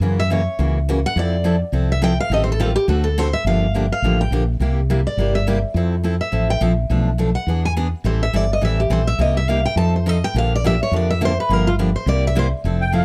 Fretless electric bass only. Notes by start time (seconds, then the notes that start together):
0.00 F#2
0.59 C#2
1.16 F2
1.72 C2
2.30 A1
2.88 D2
3.44 G1
4.02 A1
4.30 A#1
4.60 C2
5.17 G1
5.74 F2
6.32 A1
6.61 A#1
6.90 B1
7.46 E2
8.04 A1
8.33 G1
8.62 A1
8.90 A#1
9.18 C2
9.76 F2
10.34 A#1
10.91 F2
11.49 G1
12.06 C2
12.64 F1